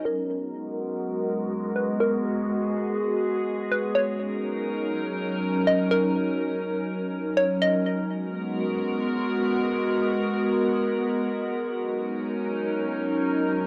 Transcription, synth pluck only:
0.05 1.72 A#4 medium
1.76 1.99 B4 medium
2.00 3.67 A#4 loud
3.72 3.95 B4 medium
3.95 5.62 C#5 loud
5.67 5.90 D#5 medium
5.91 7.33 A#4 loud
7.37 7.60 C#5 medium
7.62 7.85 D#5 medium

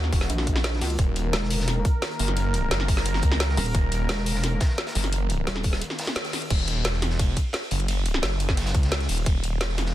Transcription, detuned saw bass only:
0.13 0.28 E1 loud
0.99 1.32 D#1 loud
2.19 2.70 F#1 loud
2.71 3.22 F#1 loud
3.23 3.56 C#2 loud
3.75 4.08 D#1 loud
4.95 5.46 F#1 loud
6.50 6.84 D#1 loud
6.85 7.35 E1 loud
7.71 8.22 F#1 loud
8.23 8.73 F#1 loud
8.75 9.08 C#2 loud
9.09 9.25 D#1 loud
9.26 9.59 D#1 loud

